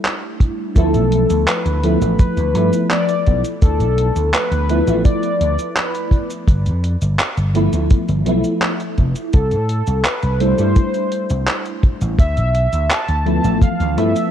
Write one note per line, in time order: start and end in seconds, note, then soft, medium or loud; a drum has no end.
0.00 0.73 G3 medium
0.00 0.74 A3 medium
0.00 0.74 D4 medium
0.00 0.75 E4 loud
0.05 clap loud
0.05 closed hi-hat medium
0.40 kick loud
0.40 closed hi-hat medium
0.75 0.96 D2 medium
0.75 1.76 F3 loud
0.75 1.76 A3 medium
0.75 1.77 B3 medium
0.75 1.77 E4 loud
0.75 1.49 A4 loud
0.75 kick loud
0.75 closed hi-hat loud
0.75 cabasa soft
0.94 1.24 B1 loud
0.94 closed hi-hat soft
0.94 cabasa soft
1.12 closed hi-hat medium
1.30 1.45 D2 medium
1.30 closed hi-hat soft
1.30 cabasa medium
1.48 2.18 B4 loud
1.48 clap loud
1.48 closed hi-hat loud
1.48 cabasa soft
1.66 1.95 D2 medium
1.66 closed hi-hat soft
1.66 cabasa soft
1.83 1.98 F3 loud
1.83 1.99 A3 medium
1.83 1.99 B3 medium
1.83 1.99 E4 loud
1.83 closed hi-hat medium
2.01 2.16 A1 medium
2.01 2.50 F3 medium
2.01 2.51 A3 medium
2.01 2.51 B3 medium
2.01 2.51 E4 medium
2.01 closed hi-hat soft
2.01 cabasa medium
2.19 2.86 B4 loud
2.19 kick loud
2.19 closed hi-hat loud
2.19 cabasa soft
2.37 2.55 D2 loud
2.37 closed hi-hat soft
2.37 cabasa soft
2.54 2.70 G2 medium
2.54 4.64 F3 loud
2.54 4.65 A3 medium
2.54 4.65 B3 medium
2.54 4.66 E4 loud
2.54 closed hi-hat medium
2.73 closed hi-hat soft
2.73 cabasa medium
2.90 3.41 D5 loud
2.90 clap loud
2.90 closed hi-hat loud
2.90 cabasa soft
3.09 closed hi-hat soft
3.09 cabasa soft
3.26 3.41 B1 loud
3.26 kick medium
3.26 closed hi-hat soft
3.45 closed hi-hat soft
3.45 cabasa medium
3.62 3.81 D2 medium
3.62 4.29 A4 loud
3.62 kick loud
3.62 closed hi-hat loud
3.62 cabasa soft
3.80 4.09 B1 loud
3.80 closed hi-hat soft
3.80 cabasa soft
3.98 closed hi-hat medium
4.16 4.30 D2 medium
4.16 closed hi-hat soft
4.16 cabasa medium
4.33 5.01 B4 loud
4.33 clap loud
4.33 closed hi-hat loud
4.33 cabasa soft
4.51 4.81 D2 medium
4.51 closed hi-hat soft
4.51 cabasa soft
4.68 4.83 F3 medium
4.68 4.83 A3 medium
4.68 4.83 B3 medium
4.68 4.83 E4 medium
4.68 closed hi-hat medium
4.86 5.02 A1 medium
4.86 6.45 F3 medium
4.86 6.45 A3 medium
4.86 6.46 B3 medium
4.86 6.46 E4 loud
4.86 closed hi-hat soft
4.86 cabasa medium
5.05 5.78 D5 loud
5.05 kick loud
5.05 closed hi-hat loud
5.05 cabasa soft
5.23 closed hi-hat soft
5.23 cabasa soft
5.41 5.55 D2 medium
5.41 closed hi-hat medium
5.59 closed hi-hat soft
5.59 cabasa medium
5.77 6.30 B4 medium
5.77 clap loud
5.77 closed hi-hat loud
5.77 cabasa soft
5.95 closed hi-hat soft
5.95 cabasa soft
6.11 kick loud
6.11 closed hi-hat soft
6.30 closed hi-hat soft
6.30 cabasa medium
6.47 6.67 G1 medium
6.47 kick loud
6.47 closed hi-hat loud
6.47 cabasa soft
6.66 6.95 F2 loud
6.66 closed hi-hat soft
6.66 cabasa soft
6.84 closed hi-hat medium
7.02 7.16 G1 medium
7.02 closed hi-hat soft
7.02 cabasa medium
7.19 clap loud
7.19 closed hi-hat loud
7.19 cabasa soft
7.37 7.66 G1 medium
7.37 closed hi-hat soft
7.37 cabasa soft
7.54 7.70 F3 medium
7.54 7.70 A3 medium
7.54 7.70 B3 medium
7.54 7.71 E4 loud
7.54 closed hi-hat medium
7.72 7.87 D2 medium
7.72 8.22 F3 medium
7.72 8.22 A3 medium
7.72 8.22 B3 medium
7.72 8.22 E4 medium
7.72 closed hi-hat soft
7.72 cabasa medium
7.91 kick loud
7.91 closed hi-hat loud
7.91 cabasa soft
8.09 8.26 G1 loud
8.09 closed hi-hat soft
8.09 cabasa soft
8.25 8.41 B1 medium
8.25 9.31 F3 loud
8.25 9.31 A3 medium
8.25 9.32 B3 medium
8.25 9.32 E4 loud
8.25 closed hi-hat medium
8.44 closed hi-hat soft
8.44 cabasa medium
8.62 clap loud
8.62 closed hi-hat medium
8.62 cabasa soft
8.80 closed hi-hat soft
8.80 cabasa soft
8.98 9.13 F1 loud
8.98 kick medium
8.98 closed hi-hat soft
9.16 closed hi-hat soft
9.16 cabasa medium
9.33 9.53 C2 loud
9.33 10.07 A4 loud
9.33 kick loud
9.33 closed hi-hat loud
9.33 cabasa soft
9.51 9.81 A2 loud
9.51 closed hi-hat soft
9.51 cabasa soft
9.69 closed hi-hat medium
9.87 10.02 C2 medium
9.87 closed hi-hat soft
9.87 cabasa medium
10.05 10.42 B4 loud
10.05 clap loud
10.05 closed hi-hat medium
10.05 cabasa soft
10.23 10.52 C2 medium
10.23 closed hi-hat soft
10.23 cabasa soft
10.40 10.54 G3 medium
10.40 10.54 A3 medium
10.40 10.54 D4 medium
10.40 10.55 E4 medium
10.40 11.48 C5 loud
10.40 closed hi-hat medium
10.57 10.73 G2 medium
10.57 12.16 G3 medium
10.57 12.17 A3 medium
10.57 12.17 D4 medium
10.57 12.18 E4 loud
10.57 closed hi-hat soft
10.57 cabasa medium
10.76 kick loud
10.76 closed hi-hat medium
10.76 cabasa soft
10.94 closed hi-hat soft
10.94 cabasa soft
11.12 closed hi-hat medium
11.30 11.45 C2 loud
11.30 closed hi-hat soft
11.30 cabasa medium
11.48 clap loud
11.48 closed hi-hat medium
11.48 cabasa soft
11.66 closed hi-hat soft
11.66 cabasa soft
11.83 kick loud
11.83 closed hi-hat soft
12.01 12.16 A1 medium
12.01 closed hi-hat soft
12.01 cabasa soft
12.19 12.39 D2 medium
12.19 12.92 E5 loud
12.19 kick loud
12.19 closed hi-hat loud
12.19 cabasa soft
12.37 12.66 B1 loud
12.37 closed hi-hat soft
12.37 cabasa soft
12.55 closed hi-hat medium
12.73 12.87 D2 medium
12.73 closed hi-hat soft
12.73 cabasa medium
12.91 13.62 A5 loud
12.91 clap loud
12.91 closed hi-hat medium
12.91 cabasa soft
13.09 13.38 D2 medium
13.09 closed hi-hat soft
13.09 cabasa soft
13.25 13.41 F3 loud
13.25 13.41 A3 medium
13.25 13.42 B3 medium
13.25 13.42 E4 loud
13.25 closed hi-hat medium
13.43 13.59 A1 medium
13.43 13.94 E3 medium
13.43 13.93 F3 medium
13.43 13.93 A3 medium
13.43 13.94 B3 medium
13.43 closed hi-hat soft
13.43 cabasa medium
13.62 13.95 F5 loud
13.62 muted slap bass stroke soft
13.62 kick loud
13.62 closed hi-hat medium
13.62 cabasa soft
13.80 13.98 D2 loud
13.80 closed hi-hat soft
13.80 cabasa soft
13.96 14.13 G2 loud
13.96 14.31 F3 loud
13.96 14.31 A3 medium
13.96 14.31 B3 medium
13.96 14.31 E4 loud
13.96 14.31 E5 medium
13.96 closed hi-hat medium
14.16 closed hi-hat soft
14.16 cabasa medium